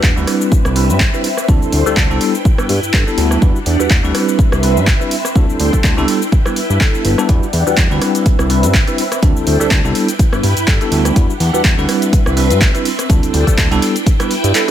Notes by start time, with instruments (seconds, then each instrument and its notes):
Already playing: tine electric piano G3 D4 E4 F#4 B4, string machine D4 G4 F#5
0.03 analog synth bass E2, kick, clap, shaker
0.16 analog synth bass D2, tine electric piano G3 C4 D4 E4 B4, tambourine, shaker
0.27 string machine C4 B4 E5, cross-stick, open hi-hat, tambourine
0.41 tambourine, shaker
0.52 analog synth bass C2, kick, tambourine, shaker
0.65 analog synth bass C2, cross-stick, tambourine, shaker
0.76 tine electric piano G3 C4 D4 E4 B4, open hi-hat, tambourine
0.89 analog synth bass G2, tambourine, shaker
1.00 analog synth bass G1, kick, clap, shaker
1.13 tine electric piano G3 C4 D4 E4 B4, tambourine, shaker
1.24 open hi-hat, tambourine
1.37 cross-stick, tambourine, shaker
1.48 analog synth bass D2, tine electric piano G3 C4 D4 E4 A4, string machine D4 C5 G5, kick, tambourine, shaker
1.62 analog synth bass D2, tambourine, shaker
1.72 analog synth bass D2, open hi-hat, tambourine
1.86 analog synth bass D2, tine electric piano G3 C4 D4 E4 A4, tambourine, shaker
1.97 analog synth bass D2, kick, clap, shaker
2.10 analog synth bass C2, tine electric piano G3 B3 D4 E4 A4, shaker
2.20 string machine E4 B4, open hi-hat, tambourine
2.34 tambourine, shaker
2.45 kick, tambourine, shaker
2.58 analog synth bass G2, tine electric piano G3 B3 D4 E4 B4, cross-stick, tambourine, shaker
2.69 analog synth bass G2, open hi-hat, tambourine
2.83 analog synth bass G2, tambourine, shaker
2.93 analog synth bass G2, tine electric piano G3 B3 D4 E4 A4, kick, clap, shaker
3.07 tine electric piano G3 B3 D4 E4 A4, tambourine, shaker
3.18 analog synth bass D2, open hi-hat, tambourine
3.31 cross-stick, tambourine, shaker
3.42 analog synth bass E2, tine electric piano G3 D4 E4 F#4 B4, string machine D4 G4 F#5, kick, tambourine, shaker
3.56 tambourine, shaker
3.66 analog synth bass E2, open hi-hat, tambourine
3.79 analog synth bass E2, tine electric piano G3 D4 E4 F#4 B4, tambourine, shaker
3.90 analog synth bass E2, kick, clap, shaker
4.03 analog synth bass D2, tine electric piano G3 C4 D4 E4 B4, shaker
4.14 string machine C4 B4 E5, cross-stick, open hi-hat, tambourine
4.29 tambourine, shaker
4.39 analog synth bass C2, kick, tambourine, shaker
4.52 analog synth bass C2, cross-stick, tambourine, shaker
4.63 tine electric piano G3 C4 D4 E4 B4, open hi-hat, tambourine
4.76 analog synth bass G2, tambourine, shaker
4.87 analog synth bass G1, kick, clap, shaker
5.00 tine electric piano G3 C4 D4 E4 B4, tambourine, shaker
5.11 open hi-hat, tambourine
5.25 cross-stick, tambourine, shaker
5.35 analog synth bass D2, tine electric piano G3 C4 D4 E4 A4, string machine D4 C5 G5, kick, tambourine, shaker
5.49 analog synth bass D2, tambourine, shaker
5.60 analog synth bass D2, open hi-hat, tambourine
5.73 analog synth bass D2, tine electric piano G3 C4 D4 E4 A4, kick, tambourine, shaker
5.84 analog synth bass D2, kick, clap, shaker
5.97 analog synth bass C2, tine electric piano G3 B3 D4 E4 A4, tambourine, shaker
6.08 string machine E4 B4, open hi-hat, tambourine
6.22 tambourine, shaker
6.32 kick, tambourine, shaker
6.45 tine electric piano G3 B3 D4 E4 B4, cross-stick, tambourine, shaker
6.56 open hi-hat, tambourine
6.70 analog synth bass G2, tambourine, shaker
6.80 tine electric piano G3 B3 D4 E4 A4, kick, clap, shaker
6.94 tambourine, shaker
7.05 analog synth bass G1, open hi-hat, tambourine
7.18 tine electric piano G3 B3 D4 E4 A4, cross-stick, tambourine, shaker
7.29 analog synth bass E2, tine electric piano G3 D4 E4 F#4 B4, string machine D4 G4 F#5, kick, closed hi-hat, tambourine, shaker
7.43 tambourine, shaker
7.53 analog synth bass E2, open hi-hat, tambourine
7.66 analog synth bass E2, tine electric piano G3 D4 E4 F#4 B4, tambourine, shaker
7.77 analog synth bass E2, kick, clap, closed hi-hat, shaker
7.90 analog synth bass D2, tine electric piano G3 C4 D4 E4 B4, tambourine, shaker
8.01 string machine C4 B4 E5, cross-stick, open hi-hat, tambourine
8.15 closed hi-hat, tambourine, shaker
8.26 analog synth bass C2, kick, closed hi-hat, tambourine, shaker
8.39 analog synth bass C2, cross-stick, tambourine, shaker
8.50 tine electric piano G3 C4 D4 E4 B4, open hi-hat, tambourine
8.63 analog synth bass G2, closed hi-hat, tambourine, shaker
8.74 analog synth bass G1, kick, clap, closed hi-hat, shaker
8.87 tine electric piano G3 C4 D4 E4 B4, closed hi-hat, tambourine, shaker
8.98 open hi-hat, tambourine
9.12 cross-stick, closed hi-hat, tambourine, shaker
9.22 analog synth bass D2, tine electric piano G3 C4 D4 E4 A4, string machine D4 C5 G5, kick, closed hi-hat, tambourine, shaker
9.36 analog synth bass D2, tambourine, shaker
9.47 analog synth bass D2, open hi-hat, tambourine
9.60 analog synth bass D2, tine electric piano G3 C4 D4 E4 A4, tambourine, shaker
9.71 analog synth bass D2, kick, clap, closed hi-hat, shaker
9.84 analog synth bass C2, tine electric piano G3 B3 D4 E4 A4, tambourine, shaker
9.95 string machine E4 B4 G5, open hi-hat, tambourine
10.08 closed hi-hat, tambourine, shaker
10.19 kick, closed hi-hat, tambourine, shaker
10.32 analog synth bass G2, tine electric piano G3 B3 D4 E4 B4, cross-stick, tambourine, shaker
10.43 analog synth bass G2, open hi-hat, tambourine
10.57 analog synth bass G2, closed hi-hat, tambourine, shaker
10.67 analog synth bass G2, tine electric piano G3 B3 D4 E4 A4, kick, clap, closed hi-hat, shaker
10.81 tine electric piano G3 B3 D4 E4 A4, closed hi-hat, tambourine, shaker
10.92 analog synth bass D2, open hi-hat, tambourine
11.05 cross-stick, closed hi-hat, tambourine, shaker
11.16 analog synth bass E2, tine electric piano G3 D4 E4 F#4 B4, string machine D4 G4 F#5, kick, closed hi-hat, tambourine, shaker
11.30 tambourine, shaker
11.40 analog synth bass E2, open hi-hat, tambourine
11.53 analog synth bass E2, tine electric piano G3 D4 E4 F#4 B4, tambourine, shaker
11.64 analog synth bass E2, kick, clap, closed hi-hat, tambourine, shaker
11.77 analog synth bass D2, tine electric piano G3 C4 D4 E4 B4, shaker
11.88 string machine C4 B4 E5, cross-stick, open hi-hat, tambourine
12.02 closed hi-hat, tambourine, shaker
12.13 analog synth bass C2, kick, closed hi-hat, tambourine, shaker
12.26 analog synth bass C2, cross-stick, tambourine, shaker
12.37 tine electric piano G3 C4 D4 E4 B4, open hi-hat, tambourine
12.50 analog synth bass G2, closed hi-hat, tambourine, shaker
12.61 analog synth bass G1, kick, clap, closed hi-hat, shaker
12.74 tine electric piano G3 C4 D4 E4 B4, closed hi-hat, tambourine, shaker
12.85 open hi-hat, tambourine
12.99 cross-stick, closed hi-hat, tambourine, shaker
13.09 analog synth bass D2, tine electric piano G3 C4 D4 E4 A4, string machine D4 C5 G5, kick, closed hi-hat, tambourine, shaker
13.23 analog synth bass D2, closed hi-hat, tambourine, shaker
13.33 analog synth bass D2, open hi-hat, tambourine
13.47 analog synth bass D2, tine electric piano G3 C4 D4 E4 A4, kick, closed hi-hat, tambourine, shaker
13.58 analog synth bass D2, kick, clap, closed hi-hat, shaker
13.71 analog synth bass C2, tine electric piano G3 B3 D4 E4 A4, closed hi-hat, tambourine, shaker
13.82 string machine E4 B4 G5, open hi-hat, tambourine
13.96 closed hi-hat, tambourine, shaker
14.06 kick, closed hi-hat, tambourine, shaker
14.19 tine electric piano G3 B3 D4 E4 B4, cross-stick, closed hi-hat, tambourine, shaker
14.31 open hi-hat, tambourine
14.44 analog synth bass G2, closed hi-hat, tambourine, shaker
14.55 tine electric piano G3 B3 D4 E4 A4, clap, closed hi-hat, tambourine, shaker